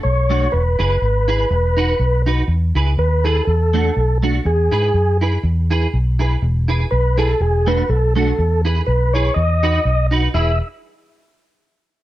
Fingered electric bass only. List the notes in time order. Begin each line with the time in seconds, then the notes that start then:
0.05 B1
0.53 E1
0.80 F#1
1.02 G#1
1.50 E1
2.00 B1
2.48 E2
2.75 C#2
2.98 D#2
3.47 E2
3.97 B1
4.45 E2
4.72 G#2
4.94 F#2
5.43 E2
5.94 B1
6.42 E1
6.92 B1
7.40 E1
7.89 B1
8.39 E2
8.88 B1
9.36 E2
9.85 B1
10.34 E1